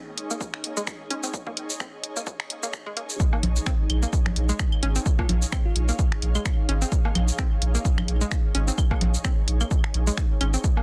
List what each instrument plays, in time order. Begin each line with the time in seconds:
Already playing: synth texture G#3 C#4, ambient pad A#3 D#4 G#4 C#5 D#5
0.18 closed hi-hat
0.31 synth arpeggio sound A#3, cabasa
0.41 kick, cabasa
0.54 finger snap
0.64 closed hi-hat
0.77 synth arpeggio sound G#3, cabasa
0.87 finger snap, kick, cabasa
1.11 synth arpeggio sound C#4, closed hi-hat
1.23 synth arpeggio sound C4, cabasa
1.34 kick, cabasa
1.47 synth arpeggio sound A#3, kick
1.57 closed hi-hat
1.70 cabasa
1.80 synth arpeggio sound C4, finger snap, kick, cabasa
2.04 closed hi-hat
2.16 synth arpeggio sound A#3, cabasa
2.27 kick, cabasa
2.40 finger snap
2.50 closed hi-hat
2.63 synth arpeggio sound A#3, cabasa
2.73 finger snap, kick, cabasa
2.86 synth arpeggio sound G#3
2.97 synth arpeggio sound A#3, closed hi-hat
3.10 cabasa
3.20 kick, cabasa
3.33 synth arpeggio sound A#3, low woodblock
3.43 sub bass A#1, closed hi-hat, low conga
3.56 cabasa
3.66 synth arpeggio sound C4, finger snap, kick, cabasa
3.90 sub bass A#1, ambient pad F5, closed hi-hat, claves
4.03 synth arpeggio sound A#3, cabasa
4.13 kick, cabasa
4.26 finger snap, low conga
4.36 sub bass A#1, closed hi-hat
4.49 synth arpeggio sound G#3, cabasa
4.59 finger snap, kick, cabasa
4.72 claves
4.83 sub bass G#1, synth arpeggio sound C#4, closed hi-hat
4.96 synth arpeggio sound C4, cabasa
5.06 kick, cabasa
5.19 synth arpeggio sound A#3, fm electric piano F4, kick, low woodblock
5.29 sub bass A#1, fm electric piano F4, closed hi-hat, low conga
5.42 cabasa
5.52 synth arpeggio sound C4, finger snap, kick, cabasa, claves
5.65 fm electric piano F4
5.76 sub bass A#1, closed hi-hat
5.89 synth arpeggio sound A#3, cabasa
5.99 kick, cabasa
6.12 finger snap
6.22 sub bass A#1, closed hi-hat
6.35 synth arpeggio sound G#3, cabasa, claves
6.45 finger snap, kick, cabasa
6.69 sub bass G#1, synth arpeggio sound C#4, closed hi-hat
6.82 synth arpeggio sound C4, cabasa
6.92 kick, cabasa
7.05 synth arpeggio sound A#3, low woodblock
7.15 sub bass A#1, closed hi-hat, low conga, claves
7.28 cabasa
7.38 synth arpeggio sound C4, finger snap, kick, cabasa
7.62 sub bass A#1, closed hi-hat
7.75 synth arpeggio sound A#3, cabasa
7.85 kick, cabasa
7.98 finger snap, low conga, claves
8.08 sub bass A#1, closed hi-hat
8.21 synth arpeggio sound G#3, cabasa
8.31 finger snap, kick, cabasa
8.55 sub bass G#1, synth arpeggio sound C#4, closed hi-hat
8.68 synth arpeggio sound C4, cabasa
8.78 kick, cabasa, claves
8.91 synth arpeggio sound A#3, kick, low woodblock
9.01 sub bass A#1, closed hi-hat, low conga
9.14 cabasa
9.24 synth arpeggio sound C4, finger snap, kick, cabasa
9.48 sub bass A#1, closed hi-hat
9.61 synth arpeggio sound A#3, cabasa, claves
9.71 kick, cabasa
9.84 finger snap
9.94 sub bass A#1, closed hi-hat
10.07 synth arpeggio sound G#3, cabasa
10.18 finger snap, kick, cabasa
10.41 sub bass G#1, synth arpeggio sound C#4, ambient pad D#5, closed hi-hat, claves
10.54 synth arpeggio sound C4, cabasa
10.64 kick, cabasa
10.77 synth arpeggio sound A#3, low woodblock